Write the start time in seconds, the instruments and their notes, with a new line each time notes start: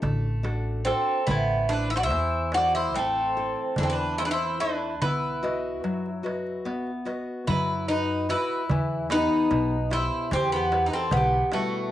Already playing: nylon-string guitar D4 F#4 A4
0.02 upright bass A1, nylon-string guitar A3, darbuka dum
0.43 nylon-string guitar D4 F#4 A4, darbuka tek
0.85 bouzouki C4, nylon-string guitar D4 F#4 A4, mandolin A4, darbuka tek
1.27 upright bass A1, nylon-string guitar A3, bouzouki B3, mandolin E4, darbuka dum
1.69 bouzouki D4, nylon-string guitar E4 A4 C5, darbuka tek
1.73 mandolin B4
1.90 bouzouki E4
1.96 bouzouki F#4, mandolin C5 D5
2.03 bouzouki E4, mandolin C5
2.11 upright bass E2, nylon-string guitar E3, darbuka tek
2.52 nylon-string guitar E4 A4 C5, bouzouki F#4, darbuka tek
2.57 mandolin D5
2.73 bouzouki E4, mandolin C5, darbuka tek
2.94 upright bass A1, nylon-string guitar A3, bouzouki C4, darbuka tek
2.99 mandolin A4
3.37 nylon-string guitar C4 E4 A4
3.56 darbuka tek
3.76 upright bass E2, nylon-string guitar E3, bouzouki D4, mandolin A4, darbuka dum
3.83 bouzouki C4, mandolin A4
3.90 bouzouki D4, mandolin B4
4.18 nylon-string guitar C4 E4 A4, bouzouki E4, mandolin C5, darbuka tek
4.25 bouzouki D4, mandolin B4
4.31 bouzouki E4, mandolin C5
4.60 bouzouki D4, nylon-string guitar E4 A4 E5, mandolin B4
5.02 upright bass B1, nylon-string guitar B3, bouzouki E4, mandolin B4, darbuka dum
5.23 darbuka tek
5.43 nylon-string guitar F#4 B4 D#5, darbuka tek
5.84 upright bass F#2, nylon-string guitar F#3, darbuka tek
6.06 darbuka tek
6.23 nylon-string guitar F#4 B4 D#5, darbuka tek
6.47 darbuka tek
6.65 upright bass B1, nylon-string guitar B3, darbuka tek
6.87 darbuka tek
7.05 nylon-string guitar F#4 B4 D#5, darbuka tek
7.47 upright bass F#2, nylon-string guitar F#3, bouzouki E4, mandolin B4, darbuka dum
7.68 darbuka tek
7.88 bouzouki D#4, nylon-string guitar F#4 B4 D#5, mandolin B4, darbuka tek
8.29 bouzouki E4, nylon-string guitar F#4 B4 D#5, mandolin B4, darbuka tek
8.49 darbuka tek
8.69 upright bass E2, nylon-string guitar E3, darbuka dum
9.10 nylon-string guitar B3 G4 B4, bouzouki D#4, mandolin B4, darbuka tek
9.31 darbuka tek
9.51 upright bass B1, nylon-string guitar B2, darbuka tek
9.90 nylon-string guitar E4 G4, bouzouki E4, mandolin C5, darbuka tek
10.31 upright bass E2, nylon-string guitar E3, bouzouki C4, darbuka tek, darbuka dum
10.35 mandolin G4
10.52 bouzouki B3, mandolin G4
10.72 nylon-string guitar E4 G4 B4, darbuka tek
10.86 bouzouki D#4, mandolin B4
10.93 bouzouki C4, mandolin A4
11.11 upright bass B1, nylon-string guitar B2, bouzouki B3, darbuka dum
11.17 mandolin G4
11.52 nylon-string guitar G3 E4 B4, bouzouki A3, mandolin F#4, darbuka tek